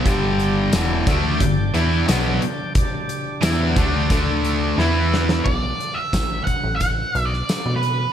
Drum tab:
CC |----------------|----------------|x---------------|
HH |x-x-x-x-x-x-x-x-|x-x-x-x-x-x-----|--x-x-x-x-x-x-x-|
TB |----x-------x---|----x-----------|----x-------x---|
SD |----o-------o---|----o-------o-oo|----o------oo---|
BD |o-----o-o-------|o-----o-o-------|o---o-o-o-------|